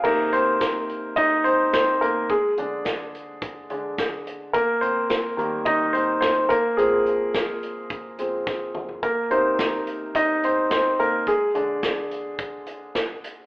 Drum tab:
CC |x---------------|----------------|----------------|----------------|
HH |--x-x-x-x-x-x-x-|x-x-x-x-x-x-x-x-|x-x-x-x-x-x-x-x-|x-x-x-x-x-x-----|
SD |----o-------o---|----o-------o---|----o-------o---|----o-------o---|
T2 |----------------|----------------|----------------|--------------o-|
FT |----------------|----------------|----------------|---------------o|
BD |o---o---o---o---|o---o---o---o---|o---o---o---o-o-|----o---o---o---|

CC |----------------|----------------|
HH |x-x-x-x-x-x-x-x-|x-x-x-x-x-x-x-x-|
SD |----o-------o---|----o-------o---|
T2 |----------------|----------------|
FT |----------------|----------------|
BD |o---o---o---o---|o---o---o---o---|